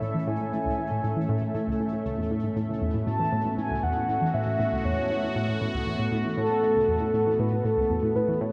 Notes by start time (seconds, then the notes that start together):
Already playing: A2 A3 C#4 E4 A4 E5
0.02 A2 E5
0.15 E3
0.27 A2 G#5
0.40 A2
0.53 A2
0.66 C#2
0.78 E3
0.91 A2
1.04 A2
1.16 E3
1.29 A2
1.42 A2
1.55 A2
1.67 C#2
1.80 A2
1.93 A2
2.06 C#2
2.18 E2
2.31 A2
2.43 G#2
2.56 A2 B3
2.69 C#2
2.81 E2 F#4
2.94 A2
3.07 A2 A5
3.20 E3
3.32 A2
3.45 A2
3.58 A2 G#5
3.70 C#2
3.83 E2 F#5
3.96 A2
4.09 A2
4.22 E3
4.34 A2 E5
4.47 A2
4.60 A2
4.72 C#2
4.85 E2 C#5
4.97 A2
5.10 A2
5.23 E3
5.36 A2
5.49 A2
5.61 A2
5.74 C#2
5.87 E2
5.99 A2
6.12 A2
6.25 E3
6.37 A2 A4
6.50 A2
6.63 A2
6.76 C#2
6.88 E2
7.01 A2
7.14 A2
7.27 E3
7.39 A2 B4
7.52 A2
7.65 A2 A4
7.77 C#2
7.90 E2
8.03 A2
8.16 A2 B4
8.28 E3
8.41 A2 C#5